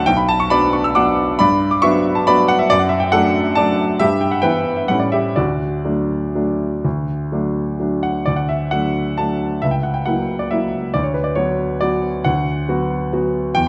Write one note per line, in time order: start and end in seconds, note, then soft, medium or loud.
0.06 0.48 B1 medium
0.06 0.16 G5 loud
0.17 0.27 B5 medium
0.29 0.38 A5 loud
0.40 0.50 C#6 medium
0.50 0.92 F#3 medium
0.50 0.92 B3 medium
0.50 0.92 D4 medium
0.50 0.71 D5 medium
0.50 0.72 B5 loud
0.73 0.83 C#6 medium
0.84 0.95 E6 medium
0.95 1.36 F#3 soft
0.95 1.36 B3 soft
0.95 1.37 D4 medium
0.95 1.37 F#5 medium
0.95 1.39 D6 loud
1.39 1.82 G2 medium
1.39 1.70 D5 medium
1.39 1.71 B5 loud
1.71 1.82 D6 medium
1.82 2.23 F#3 medium
1.82 2.23 B3 medium
1.82 2.24 D4 medium
1.82 2.14 E5 medium
1.82 2.16 C#6 loud
2.15 2.27 A5 medium
2.27 2.66 F#3 medium
2.27 2.66 B3 medium
2.27 2.66 D4 medium
2.27 2.47 D5 medium
2.27 2.49 B5 loud
2.48 2.59 F#5 loud
2.59 2.69 E5 medium
2.70 3.13 F#2 medium
2.70 2.80 D5 loud
2.79 2.91 F#5 medium
2.89 3.01 E5 medium
3.00 3.12 G5 medium
3.12 3.54 F#3 medium
3.12 3.54 A3 medium
3.12 3.55 D4 medium
3.12 3.55 A4 medium
3.12 3.57 F#5 loud
3.55 3.97 F#3 soft
3.55 3.97 A3 soft
3.55 3.97 D4 medium
3.55 3.97 D5 medium
3.55 4.00 A5 loud
4.00 4.42 G2 medium
4.00 4.20 G4 medium
4.00 4.21 E5 loud
4.21 4.32 G5 medium
4.31 4.43 F#5 medium
4.42 4.85 E3 medium
4.42 4.86 B3 medium
4.42 4.85 E4 medium
4.42 4.75 B4 medium
4.42 4.77 G5 medium
4.76 4.89 E5 medium
4.88 5.36 A2 medium
4.88 5.33 G3 soft
4.88 5.34 A3 soft
4.88 5.34 C#4 soft
4.88 5.01 F#5 medium
5.00 5.13 D5 medium
5.12 5.36 G4 medium
5.12 5.37 E5 medium
5.36 5.84 D2 medium
5.36 7.75 F#4 medium
5.36 7.79 D5 medium
5.85 6.31 F#3 soft
5.85 6.32 A3 soft
5.85 6.32 D4 soft
6.35 6.81 F#3 soft
6.35 6.81 A3 soft
6.35 6.81 D4 soft
6.85 7.31 D2 medium
7.32 7.75 F#3 soft
7.32 7.76 A3 soft
7.32 7.76 D4 soft
7.80 8.23 F#3 soft
7.80 8.23 A3 soft
7.80 8.24 D4 soft
8.03 8.27 F#5 medium
8.26 8.71 D2 soft
8.26 8.38 D5 medium
8.36 8.49 F#5 medium
8.49 8.72 E5 medium
8.71 9.14 F#3 soft
8.71 9.14 A3 soft
8.71 9.14 D4 soft
8.71 9.17 F#5 medium
9.18 9.58 F#3 soft
9.18 9.58 A3 soft
9.18 9.58 D4 soft
9.18 9.62 A5 medium
9.62 10.05 C#2 soft
9.62 9.72 E5 medium
9.71 9.83 G5 medium
9.83 9.94 F#5 medium
9.94 10.05 G5 medium
10.05 10.48 F#3 soft
10.05 10.48 A#3 soft
10.05 10.48 E4 soft
10.05 10.40 F#5 medium
10.39 10.51 D5 medium
10.51 10.91 F#3 soft
10.51 10.91 A#3 soft
10.51 10.91 E4 soft
10.51 10.94 E5 medium
10.94 11.35 D2 medium
10.94 11.04 D5 medium
11.03 11.14 C#5 medium
11.14 11.25 B4 medium
11.24 11.36 D5 medium
11.35 11.77 F#3 soft
11.35 11.78 B3 soft
11.35 11.78 F#4 soft
11.35 11.81 C#5 medium
11.81 12.21 F#3 soft
11.81 12.22 B3 soft
11.81 12.22 F#4 soft
11.81 12.25 D5 medium
12.24 12.67 D2 medium
12.24 13.12 F#5 medium
12.69 13.09 F#3 soft
12.69 13.09 B3 soft
12.69 13.09 F#4 soft
13.13 13.52 F#3 soft
13.13 13.52 B3 soft
13.13 13.52 F#4 soft
13.55 13.68 E2 medium
13.55 13.66 G5 loud